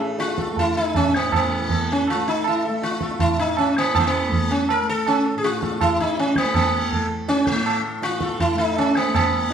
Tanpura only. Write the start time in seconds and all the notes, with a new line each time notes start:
Already playing: A2 E3 A3
0.52 A3
1.06 A2
1.59 E3
2.14 A3
2.69 A3
3.22 A2
3.74 E3
4.28 A3
4.82 A3
5.36 A2
5.90 E3
6.43 A3
6.94 A3
7.49 A2
8.01 E3
8.54 A3
9.07 A3